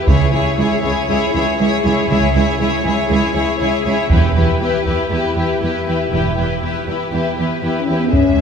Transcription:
0.07 0.16 C#2 medium
0.07 0.32 C#2 medium
0.07 0.31 E4 medium
0.07 0.32 G#4 soft
0.07 0.32 C#5 medium
0.07 taiko medium
0.32 0.41 C#2 medium
0.32 0.57 E4 soft
0.32 0.57 G#4 soft
0.32 0.58 C#5 soft
0.58 0.66 C#2 medium
0.58 0.81 E4 soft
0.58 0.83 G#4 soft
0.58 0.82 C#5 medium
0.82 0.92 C#2 medium
0.82 1.07 E4 soft
0.82 1.08 G#4 soft
0.82 1.08 C#5 soft
1.08 1.17 C#2 medium
1.08 1.31 E4 medium
1.08 1.34 G#4 medium
1.08 1.34 C#5 medium
1.33 1.43 C#2 soft
1.33 1.57 E4 soft
1.33 1.58 G#4 soft
1.33 1.59 C#5 medium
1.59 1.68 C#2 medium
1.59 1.83 E4 soft
1.59 1.84 G#4 soft
1.59 1.83 C#5 medium
1.84 1.92 C#2 medium
1.84 2.08 E4 medium
1.84 2.10 G#4 soft
1.84 2.09 C#5 soft
2.09 2.18 C#2 medium
2.09 2.33 C#2 medium
2.09 2.33 E4 medium
2.09 2.35 G#4 soft
2.09 2.35 C#5 medium
2.34 2.43 C#2 medium
2.34 2.59 E4 medium
2.34 2.58 G#4 soft
2.34 2.60 C#5 medium
2.59 2.68 C#2 soft
2.59 2.84 E4 medium
2.59 2.82 G#4 soft
2.59 2.85 C#5 soft
2.83 2.94 C#2 medium
2.83 3.09 E4 soft
2.83 3.07 G#4 soft
2.87 3.11 C#5 medium
3.08 3.18 C#2 medium
3.08 3.34 E4 medium
3.08 3.33 G#4 soft
3.08 3.35 C#5 medium
3.34 3.44 C#2 soft
3.34 3.59 E4 soft
3.34 3.58 G#4 soft
3.34 3.59 C#5 soft
3.59 3.69 C#2 soft
3.59 3.84 E4 soft
3.59 3.84 G#4 medium
3.59 3.85 C#5 medium
3.85 3.94 C#2 medium
3.85 4.09 E4 medium
3.85 4.10 G#4 soft
3.85 4.10 C#5 soft
4.10 4.35 E1 medium
4.10 4.19 E2 medium
4.10 4.35 E4 medium
4.10 4.33 G4 medium
4.10 4.36 B4 soft
4.10 taiko medium
4.35 4.44 E2 medium
4.35 4.60 E4 soft
4.35 4.59 G4 soft
4.35 4.61 B4 soft
4.60 4.69 E2 soft
4.60 4.85 E4 soft
4.60 4.85 G4 soft
4.60 4.86 B4 soft
4.85 4.95 E2 soft
4.85 5.09 E4 soft
4.85 5.09 G4 soft
4.85 5.11 B4 soft
4.85 taiko soft
5.10 5.19 E2 medium
5.10 5.35 E4 soft
5.10 5.36 G4 soft
5.10 5.37 B4 soft
5.36 5.44 E2 soft
5.36 5.60 E4 soft
5.36 5.60 G4 soft
5.36 5.62 B4 soft
5.61 5.69 E2 soft
5.61 5.84 E4 soft
5.61 5.85 G4 soft
5.61 5.87 B4 soft
5.86 5.95 E2 soft
5.86 6.09 E4 soft
5.86 6.11 G4 soft
5.86 6.12 B4 soft
6.10 6.35 E1 soft
6.10 6.20 E2 soft
6.10 6.35 E4 soft
6.10 6.35 G4 soft
6.10 6.38 B4 soft
6.36 6.45 E2 soft
6.36 6.60 E4 soft
6.36 6.61 G4 soft
6.36 6.63 B4 soft
6.61 6.70 E2 soft
6.61 6.85 E4 soft
6.61 6.86 G4 soft
6.65 6.88 B4 soft
6.86 6.95 E2 soft
6.86 7.10 E4 soft
6.86 7.10 G4 soft
6.86 7.13 B4 soft
7.11 7.20 E2 soft
7.11 7.35 E4 soft
7.11 7.35 G4 soft
7.11 7.38 B4 soft
7.36 7.46 E2 soft
7.36 7.61 E4 soft
7.36 7.61 G4 soft
7.36 7.63 B4 soft
7.62 7.71 E2 soft
7.62 7.79 B3 soft
7.62 7.85 E4 soft
7.62 7.86 G4 soft
7.62 7.88 B4 soft
7.80 7.96 C#4 soft
7.87 7.95 E2 soft
7.87 8.12 E4 soft
7.87 8.12 G4 soft
7.87 8.13 B4 soft
7.96 8.13 B3 soft
8.12 8.41 C#2 soft
8.12 8.41 G#3 soft
8.12 8.41 C#4 medium
8.12 8.41 G#4 soft
8.12 8.41 E5 soft
8.12 taiko medium
8.12 sub drop medium

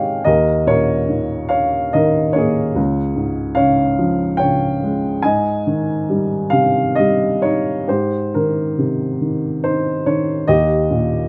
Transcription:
0.00 0.23 G#2 soft
0.00 0.23 C3 soft
0.00 0.30 D#3 soft
0.00 0.24 G#3 soft
0.00 0.23 D#4 soft
0.00 0.25 G4 soft
0.00 0.29 G#4 soft
0.00 0.29 C5 medium
0.00 0.23 C#5 medium
0.00 0.24 D#5 soft
0.00 0.30 F5 medium
0.00 0.30 G5 medium
0.00 0.30 G#5 medium
0.24 2.73 D#2 medium
0.24 0.65 A#4 medium
0.24 0.69 D#5 medium
0.67 2.32 A#2 soft
0.67 1.49 A#4 medium
0.67 1.48 C#5 medium
1.09 1.93 D#3 soft
1.49 1.91 C#5 medium
1.49 1.95 F5 medium
1.93 2.75 D#3 soft
1.93 2.34 A#4 medium
1.93 2.37 D#5 medium
2.33 2.76 A#3 soft
2.33 3.54 G#4 medium
2.33 3.55 C#5 medium
2.75 5.18 C#2 medium
3.15 4.76 G#2 soft
3.55 4.39 C#3 soft
3.55 4.35 C#5 medium
3.55 4.34 F5 medium
3.99 5.19 F3 soft
4.37 5.21 C#3 soft
4.37 5.19 C#5 medium
4.37 5.24 G5 medium
4.83 5.23 G#3 soft
5.22 7.84 G#2 medium
5.22 6.94 D#5 medium
5.22 6.92 G#5 medium
5.67 7.39 D#3 soft
6.09 6.98 G3 soft
6.50 7.85 C3 soft
6.50 6.97 F5 medium
6.95 7.43 D#5 medium
7.00 7.87 G3 soft
7.42 7.87 D#4 soft
7.42 7.89 C#5 medium
7.88 10.44 G#2 soft
7.88 9.16 G4 soft
7.88 8.35 C5 medium
8.34 9.20 D#3 soft
8.34 9.17 A#4 medium
8.78 10.44 C3 soft
9.21 10.05 D#3 soft
9.63 10.45 D#4 soft
9.63 10.07 C5 medium
10.06 10.47 D#3 soft
10.06 10.49 C#5 medium
10.48 11.28 D#2 medium
10.48 11.28 G4 medium
10.48 11.28 D#5 medium
10.91 11.28 A#2 soft

